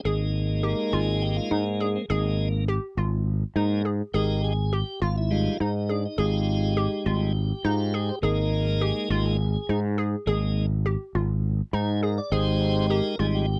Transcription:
0.05 fretless electric bass G#1, tonewheel organ G#3 A#3 D#4, synth pluck G#4
0.63 synth pluck G4, tonewheel organ A#4
0.92 fretless electric bass G#1, synth pluck F4, tonewheel organ G#4
1.22 tonewheel organ G4
1.36 tonewheel organ F4
1.51 fretless electric bass G#2, tonewheel organ D#4, synth pluck D#4
1.80 tonewheel organ D4, synth pluck G#4
1.96 tonewheel organ C4
2.09 fretless electric bass G#1, tonewheel organ G#3 A#3 D#4, synth pluck G#4
2.68 synth pluck G4
2.97 fretless electric bass G#1, synth pluck F4
3.56 fretless electric bass G#2, tonewheel organ G#3 A#3 D#4, synth pluck D#4
3.85 synth pluck G#4
4.14 fretless electric bass G#1, tonewheel organ G#3 D#4 G4 A#4, synth pluck G#4
4.44 tonewheel organ G#4
4.73 synth pluck G4, tonewheel organ G4
5.02 fretless electric bass G#1, synth pluck F4, tonewheel organ F4
5.18 tonewheel organ E4
5.31 tonewheel organ G3 G#3 D#4 F4
5.60 fretless electric bass G#2, synth pluck D#4, tonewheel organ D#4
5.89 tonewheel organ D4, synth pluck G#4
6.05 tonewheel organ D#4
6.18 fretless electric bass G#1, tonewheel organ G#3 D#4 F4 G4, synth pluck G#4
6.77 synth pluck G4
7.05 fretless electric bass G#1, tonewheel organ G3 G#3 D#4, synth pluck F4
7.65 fretless electric bass G#2, synth pluck D#4, tonewheel organ F4
7.94 synth pluck G#4, tonewheel organ G#4
8.09 tonewheel organ C5
8.22 fretless electric bass G#1, tonewheel organ G#3 A#3 D#4 A#4, synth pluck G#4
8.81 synth pluck G4, tonewheel organ G#4
9.10 fretless electric bass G#1, tonewheel organ G#3 A#3 D#4 G4, synth pluck F4
9.26 tonewheel organ G#4
9.69 fretless electric bass G#2, synth pluck D#4
9.98 synth pluck G#4
10.26 fretless electric bass G#1, tonewheel organ G#3 A#3 D#4, synth pluck G#4
10.86 synth pluck G4
11.15 fretless electric bass G#1, synth pluck F4
11.73 fretless electric bass G#2, synth pluck D#4, tonewheel organ G#4
12.03 synth pluck G#4, tonewheel organ A#4
12.18 tonewheel organ D5
12.32 fretless electric bass G#1, tonewheel organ G#3 D#4 G4 C5, synth pluck G#4
12.90 synth pluck G4, tonewheel organ A#4
13.19 fretless electric bass G#1, tonewheel organ G3 G#3 D#4 G#4, synth pluck F4
13.35 tonewheel organ G4

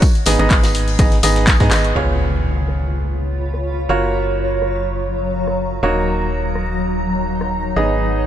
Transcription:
0.02 kick, closed hi-hat, tambourine
0.15 closed hi-hat
0.26 fm bass G#1, grand piano B3 D#4 G#4 D#5, snare, open hi-hat, tambourine
0.39 fm bass G#1, grand piano B3 D#4 G#4 D#5, closed hi-hat
0.51 kick, clap, closed hi-hat, open hi-hat
0.63 snare, closed hi-hat, tambourine
0.75 open hi-hat
0.88 closed hi-hat, open hi-hat
0.99 fm bass G#1, grand piano B3 D#4 G#4 D#5, kick, closed hi-hat, tambourine
1.12 snare, closed hi-hat
1.23 fm bass G#1, grand piano B3 D#4 G#4 D#5, open hi-hat, tambourine
1.36 snare, closed hi-hat
1.47 kick, snare, clap, closed hi-hat, tambourine
1.60 fm bass G#2, grand piano B3 D#4 G#4 D#5, kick, cross-stick, snare, closed hi-hat
1.71 fm bass G#1, grand piano B3 D#4 G#4 D#5, snare, clap, open hi-hat, tambourine
1.84 closed hi-hat
1.96 fm bass C#2, grand piano B3 F4 G#4 C#5, ambient pad F4, impact
2.34 ambient pad C#5
2.68 cross-stick
3.54 cross-stick
3.89 fm bass F#1, ambient pad F#3, grand piano A#3 F4 F#4 C#5
4.07 ambient pad A#5
4.62 cross-stick
5.47 cross-stick
5.83 fm bass D#1, grand piano A#3 D#4 F#4 C#5, ambient pad D#4
6.17 ambient pad C#5
6.55 cross-stick
6.71 ambient pad F#5
7.41 cross-stick
7.76 fm bass G#1, grand piano B3 D#4 G#4 D#5

